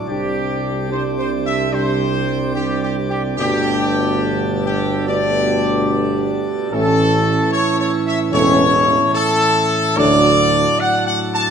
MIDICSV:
0, 0, Header, 1, 6, 480
1, 0, Start_track
1, 0, Tempo, 833333
1, 42, Time_signature, 4, 2, 24, 8
1, 2922, Tempo, 817439
1, 6698, End_track
2, 0, Start_track
2, 0, Title_t, "Trumpet section"
2, 0, Program_c, 0, 61
2, 39, Note_on_c, 0, 67, 88
2, 496, Note_off_c, 0, 67, 0
2, 521, Note_on_c, 0, 72, 82
2, 592, Note_off_c, 0, 72, 0
2, 682, Note_on_c, 0, 72, 80
2, 753, Note_off_c, 0, 72, 0
2, 836, Note_on_c, 0, 76, 91
2, 985, Note_off_c, 0, 76, 0
2, 996, Note_on_c, 0, 72, 97
2, 1464, Note_on_c, 0, 67, 84
2, 1469, Note_off_c, 0, 72, 0
2, 1614, Note_off_c, 0, 67, 0
2, 1623, Note_on_c, 0, 67, 82
2, 1696, Note_off_c, 0, 67, 0
2, 1778, Note_on_c, 0, 67, 86
2, 1853, Note_off_c, 0, 67, 0
2, 1943, Note_on_c, 0, 67, 106
2, 2650, Note_off_c, 0, 67, 0
2, 2676, Note_on_c, 0, 67, 86
2, 2905, Note_off_c, 0, 67, 0
2, 2922, Note_on_c, 0, 74, 105
2, 3621, Note_off_c, 0, 74, 0
2, 3884, Note_on_c, 0, 69, 113
2, 4336, Note_off_c, 0, 69, 0
2, 4358, Note_on_c, 0, 73, 104
2, 4506, Note_off_c, 0, 73, 0
2, 4516, Note_on_c, 0, 73, 103
2, 4588, Note_off_c, 0, 73, 0
2, 4676, Note_on_c, 0, 76, 103
2, 4747, Note_off_c, 0, 76, 0
2, 4835, Note_on_c, 0, 73, 112
2, 5289, Note_off_c, 0, 73, 0
2, 5307, Note_on_c, 0, 69, 119
2, 5780, Note_off_c, 0, 69, 0
2, 5796, Note_on_c, 0, 74, 127
2, 6280, Note_off_c, 0, 74, 0
2, 6281, Note_on_c, 0, 78, 112
2, 6432, Note_off_c, 0, 78, 0
2, 6439, Note_on_c, 0, 78, 111
2, 6512, Note_off_c, 0, 78, 0
2, 6594, Note_on_c, 0, 81, 111
2, 6698, Note_off_c, 0, 81, 0
2, 6698, End_track
3, 0, Start_track
3, 0, Title_t, "French horn section"
3, 0, Program_c, 1, 60
3, 47, Note_on_c, 1, 62, 57
3, 49, Note_off_c, 1, 62, 0
3, 49, Note_on_c, 1, 62, 58
3, 501, Note_off_c, 1, 62, 0
3, 520, Note_on_c, 1, 62, 61
3, 524, Note_off_c, 1, 62, 0
3, 524, Note_on_c, 1, 62, 59
3, 976, Note_off_c, 1, 62, 0
3, 995, Note_on_c, 1, 62, 61
3, 1000, Note_off_c, 1, 62, 0
3, 1000, Note_on_c, 1, 62, 67
3, 1448, Note_off_c, 1, 62, 0
3, 1468, Note_on_c, 1, 62, 64
3, 1925, Note_off_c, 1, 62, 0
3, 1948, Note_on_c, 1, 62, 66
3, 1951, Note_on_c, 1, 57, 68
3, 2898, Note_off_c, 1, 62, 0
3, 2900, Note_off_c, 1, 57, 0
3, 2924, Note_on_c, 1, 57, 77
3, 2928, Note_on_c, 1, 62, 76
3, 3861, Note_off_c, 1, 57, 0
3, 3863, Note_off_c, 1, 62, 0
3, 3886, Note_on_c, 1, 61, 68
3, 3888, Note_on_c, 1, 57, 71
3, 4059, Note_off_c, 1, 61, 0
3, 4060, Note_off_c, 1, 57, 0
3, 4829, Note_on_c, 1, 61, 84
3, 4832, Note_on_c, 1, 57, 86
3, 5005, Note_off_c, 1, 61, 0
3, 5007, Note_off_c, 1, 57, 0
3, 5794, Note_on_c, 1, 62, 85
3, 5797, Note_on_c, 1, 57, 82
3, 5976, Note_off_c, 1, 62, 0
3, 5978, Note_off_c, 1, 57, 0
3, 6698, End_track
4, 0, Start_track
4, 0, Title_t, "Pipe organ"
4, 0, Program_c, 2, 19
4, 47, Note_on_c, 2, 55, 52
4, 49, Note_on_c, 2, 48, 52
4, 49, Note_on_c, 2, 62, 49
4, 51, Note_on_c, 2, 74, 50
4, 1929, Note_off_c, 2, 62, 0
4, 1931, Note_off_c, 2, 74, 0
4, 1947, Note_off_c, 2, 55, 0
4, 1952, Note_on_c, 2, 47, 57
4, 1952, Note_on_c, 2, 62, 56
4, 1952, Note_on_c, 2, 69, 54
4, 1953, Note_off_c, 2, 48, 0
4, 1958, Note_on_c, 2, 55, 55
4, 3862, Note_off_c, 2, 62, 0
4, 3865, Note_off_c, 2, 55, 0
4, 3885, Note_off_c, 2, 47, 0
4, 3885, Note_off_c, 2, 69, 0
4, 3899, Note_on_c, 2, 45, 65
4, 3900, Note_on_c, 2, 52, 62
4, 3903, Note_on_c, 2, 69, 63
4, 3905, Note_on_c, 2, 61, 68
4, 5791, Note_off_c, 2, 69, 0
4, 5799, Note_off_c, 2, 45, 0
4, 5804, Note_on_c, 2, 69, 67
4, 5807, Note_on_c, 2, 54, 71
4, 5811, Note_on_c, 2, 45, 71
4, 5812, Note_on_c, 2, 62, 72
4, 5813, Note_off_c, 2, 52, 0
4, 5816, Note_off_c, 2, 61, 0
4, 6698, Note_off_c, 2, 45, 0
4, 6698, Note_off_c, 2, 54, 0
4, 6698, Note_off_c, 2, 62, 0
4, 6698, Note_off_c, 2, 69, 0
4, 6698, End_track
5, 0, Start_track
5, 0, Title_t, "Trombone section"
5, 0, Program_c, 3, 61
5, 39, Note_on_c, 3, 48, 60
5, 41, Note_on_c, 3, 55, 56
5, 496, Note_off_c, 3, 48, 0
5, 497, Note_off_c, 3, 55, 0
5, 516, Note_on_c, 3, 48, 60
5, 517, Note_on_c, 3, 55, 58
5, 972, Note_off_c, 3, 48, 0
5, 973, Note_off_c, 3, 55, 0
5, 986, Note_on_c, 3, 48, 69
5, 991, Note_on_c, 3, 55, 68
5, 1441, Note_off_c, 3, 48, 0
5, 1444, Note_off_c, 3, 55, 0
5, 1464, Note_on_c, 3, 48, 65
5, 1465, Note_on_c, 3, 55, 66
5, 1923, Note_off_c, 3, 48, 0
5, 1923, Note_off_c, 3, 55, 0
5, 1943, Note_on_c, 3, 55, 68
5, 1944, Note_on_c, 3, 47, 73
5, 2896, Note_off_c, 3, 47, 0
5, 2896, Note_off_c, 3, 55, 0
5, 2922, Note_on_c, 3, 47, 79
5, 2926, Note_on_c, 3, 55, 78
5, 3860, Note_off_c, 3, 47, 0
5, 3862, Note_off_c, 3, 55, 0
5, 3883, Note_on_c, 3, 45, 72
5, 3888, Note_on_c, 3, 52, 72
5, 4058, Note_off_c, 3, 45, 0
5, 4060, Note_off_c, 3, 52, 0
5, 4838, Note_on_c, 3, 45, 87
5, 4841, Note_on_c, 3, 52, 83
5, 5010, Note_off_c, 3, 45, 0
5, 5011, Note_off_c, 3, 52, 0
5, 5800, Note_on_c, 3, 45, 74
5, 5801, Note_on_c, 3, 54, 81
5, 5979, Note_off_c, 3, 45, 0
5, 5980, Note_off_c, 3, 54, 0
5, 6698, End_track
6, 0, Start_track
6, 0, Title_t, "Tuba"
6, 0, Program_c, 4, 58
6, 43, Note_on_c, 4, 36, 64
6, 1926, Note_off_c, 4, 36, 0
6, 1950, Note_on_c, 4, 31, 79
6, 3789, Note_off_c, 4, 31, 0
6, 3889, Note_on_c, 4, 33, 91
6, 4282, Note_off_c, 4, 33, 0
6, 4825, Note_on_c, 4, 28, 95
6, 5227, Note_off_c, 4, 28, 0
6, 5806, Note_on_c, 4, 38, 96
6, 6205, Note_off_c, 4, 38, 0
6, 6698, End_track
0, 0, End_of_file